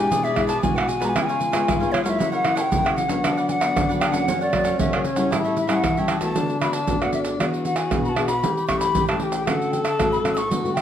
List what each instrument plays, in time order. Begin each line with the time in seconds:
Already playing: nylon-string guitar G#3 D4 E4, tenor saxophone G4, flute G#5
0.11 nylon-string guitar B2, cavaquinho E4 G#4 B4 D5, tenor saxophone G#4, pandeiro, maracas, surdo
0.24 cavaquinho G#4 B4 D5, flute E5, pandeiro, maracas
0.36 nylon-string guitar G#3 D4 E4, pandeiro, tamborim, surdo
0.47 cavaquinho G#4 B4 D5, flute A5, pandeiro, maracas
0.62 nylon-string guitar B2 G#3 D4 E4, cavaquinho E4 G#4 B4 D5, tenor saxophone F#4, flute G#5, pandeiro, maracas, surdo
0.76 cavaquinho G#4 B4 D5, flute F#5, pandeiro, tamborim, maracas
0.88 flute G#5, muted cavaquinho stroke, pandeiro, maracas
1.00 nylon-string guitar G#3 B3 F4, cavaquinho G#4 B4 D5, pandeiro, maracas
1.05 flute A#5
1.09 flute G#5
1.15 nylon-string guitar C#3, cavaquinho F4 B4 C#5 F5, tenor saxophone F4, pandeiro, tamborim, maracas, surdo
1.22 flute G5
1.26 cavaquinho B4 C#5 F5, flute G#5, pandeiro, maracas
1.40 muted cavaquinho stroke, pandeiro, maracas
1.52 nylon-string guitar G#3 B3 F4, cavaquinho B4 C#5 F5, pandeiro, tamborim, maracas
1.68 nylon-string guitar G#2, pandeiro, tamborim, maracas, surdo
1.80 nylon-string guitar G#3 B3 F4, cavaquinho B4 C#5 F5, pandeiro, maracas
1.92 cavaquinho F4 B4 C#5 F5, flute C#5, pandeiro, tamborim
2.04 nylon-string guitar F#3 A#3 E4, cavaquinho B4 C#5 F5, flute F#5, pandeiro, maracas
2.09 flute E5
2.18 nylon-string guitar C#3, cavaquinho E4 A#4 C#5 F#5, tenor saxophone E4, pandeiro, maracas, surdo
2.32 cavaquinho A#4 C#5 F#5, flute F#5, pandeiro, maracas
2.45 nylon-string guitar F#3 A#3 E4, pandeiro, tamborim
2.55 cavaquinho A#4 C#5 F#5, flute A5, pandeiro, maracas
2.61 flute G5
2.71 nylon-string guitar C#3 F#3 A#3 E4, cavaquinho E4 A#4 C#5 F#5, pandeiro, maracas, surdo
2.85 cavaquinho A#4 C#5 F#5, pandeiro, tamborim, maracas
2.96 flute F#5, muted cavaquinho stroke, pandeiro, maracas
3.08 nylon-string guitar F#3 B3 D4, cavaquinho A#4 C#5 F#5, pandeiro, maracas
3.24 nylon-string guitar D3, cavaquinho D4 B4 D5 F#5, tenor saxophone D4, pandeiro, tamborim, maracas, surdo
3.37 cavaquinho B4 D5 F#5, pandeiro, maracas
3.48 flute F#5 G#5, muted cavaquinho stroke, pandeiro, maracas
3.60 nylon-string guitar F#3 B3 D4, cavaquinho B4 D5 F#5, pandeiro, tamborim, maracas
3.77 nylon-string guitar D3, pandeiro, tamborim, maracas, surdo
3.89 nylon-string guitar F#3 B3 D4, cavaquinho B4 D5 F#5, pandeiro, maracas
3.99 cavaquinho D4 B4 D5 F#5, flute G5, pandeiro, tamborim, maracas
4.12 nylon-string guitar F#3 A#3 C#4, cavaquinho B4 D5 F#5, flute F#5, pandeiro, maracas
4.28 nylon-string guitar F#2, tenor saxophone C#4, cavaquinho F#4 A#4 C#5 F#5, pandeiro, maracas, surdo
4.41 cavaquinho A#4 C#5 F#5, flute D5, pandeiro, maracas
4.53 nylon-string guitar F#3 A#3 C#4, pandeiro, tamborim, surdo
4.64 cavaquinho A#4 C#5 F#5, pandeiro, maracas
4.79 nylon-string guitar C#3 F#3 A#3 C#4, cavaquinho F#4 A#4 C#5 F#5, flute E5, pandeiro, maracas, surdo
4.93 cavaquinho A#4 C#5 F#5, flute D5, pandeiro, tamborim, maracas
5.05 flute C#5, muted cavaquinho stroke, pandeiro, maracas
5.16 nylon-string guitar G3 C#4 E4, cavaquinho A#4 C#5 F#5, pandeiro, maracas
5.30 nylon-string guitar A2, tenor saxophone E4, cavaquinho G4 A4 C#5 E5, pandeiro, tamborim, maracas, surdo
5.44 cavaquinho A4 C#5 E5, pandeiro, maracas
5.56 flute E5, muted cavaquinho stroke, pandeiro, maracas
5.67 nylon-string guitar G3 C#4 E4, cavaquinho A4 C#5 E5, flute G#5, pandeiro, tamborim, maracas
5.75 flute F#5
5.84 nylon-string guitar E3, pandeiro, tamborim, maracas, surdo
5.97 nylon-string guitar G3 C#4 E4, cavaquinho A4 C#5 E5, flute G5, pandeiro, maracas
6.08 cavaquinho G4 A4 C#5 E5, pandeiro, tamborim, maracas
6.20 nylon-string guitar A3 B3 F#4, cavaquinho A4 C#5 E5, flute A5, pandeiro, maracas
6.36 nylon-string guitar D3, tenor saxophone D4, pandeiro, maracas, surdo
6.50 pandeiro, maracas
6.61 nylon-string guitar A3 B3 F#4, flute B5, pandeiro, tamborim, maracas
6.73 flute A5, pandeiro, maracas
6.87 nylon-string guitar A2 A3 B3 F#4, pandeiro, maracas, surdo
7.01 nylon-string guitar A3 B3 F#4, flute F#5, pandeiro, tamborim, maracas
7.13 flute E5, pandeiro, maracas
7.25 pandeiro, maracas
7.39 nylon-string guitar E3 B3 D4 G#4, tenor saxophone F#4, flute D5, pandeiro, tamborim, maracas, surdo
7.54 pandeiro, maracas
7.65 flute F#5, pandeiro, maracas
7.76 flute G#5, pandeiro, tamborim, maracas
7.91 nylon-string guitar B2 B3 D4 G#4, pandeiro, tamborim, maracas, surdo
8.04 flute B5, pandeiro, maracas
8.09 flute A5
8.16 nylon-string guitar B3 D4 G#4, pandeiro, tamborim
8.28 flute B5, pandeiro, maracas
8.43 nylon-string guitar E3 A3 C#4 G4, tenor saxophone G4, pandeiro, maracas, surdo
8.57 pandeiro, maracas
8.68 nylon-string guitar A3 C#4 G4, flute C#6, pandeiro, tamborim, maracas, surdo
8.80 flute B5, pandeiro, maracas
8.95 nylon-string guitar E3 A3 C#4 G4, pandeiro, maracas, surdo
9.09 nylon-string guitar A3 C#4 G4, flute A5, pandeiro, tamborim, maracas
9.20 flute G5 A5, pandeiro
9.32 pandeiro, maracas
9.47 nylon-string guitar D3 A3 C#4 F#4, tenor saxophone A4, flute F#5, pandeiro, tamborim, maracas, surdo
9.62 pandeiro, maracas
9.72 flute G5, pandeiro, maracas
9.84 flute A5, pandeiro, tamborim, maracas
9.99 nylon-string guitar A2 A3 C#4 F#4, pandeiro, tamborim, maracas, surdo
10.12 flute B5, pandeiro, maracas
10.24 nylon-string guitar A3 C#4 F#4, pandeiro, tamborim, maracas
10.34 flute C#6 E6, pandeiro, maracas
10.50 nylon-string guitar D3 A3 B3 F#4, tenor saxophone F#4, pandeiro, maracas, surdo
10.65 nylon-string guitar A3 B3 F#4, pandeiro, maracas
10.74 nylon-string guitar A3 B3, flute G5, pandeiro, tamborim, maracas